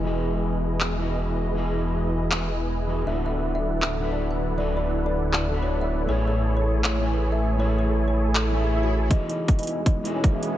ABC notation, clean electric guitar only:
X:1
M:4/4
L:1/8
Q:"Swing 16ths" 1/4=159
K:E
V:1 name="Clean electric guitar"
[E,EFGd]4- [E,EFGd] [E,EFGd]3 | [E,EFGd]4- [E,EFGd] z2 [E,EFGd] | [=D,=DFBe]4- [D,DFBe] [D,DFBe]3 | [=D,=DFBe]4- [D,DFBe] [D,DFBe]3 |
[A,EBcg]4- [A,EBcg] [A,EBcg]3 | [A,EBcg]4- [A,EBcg] [A,EBcg]3 | [E,EFGd]4- [E,EFGd] [E,EFGd]3 |]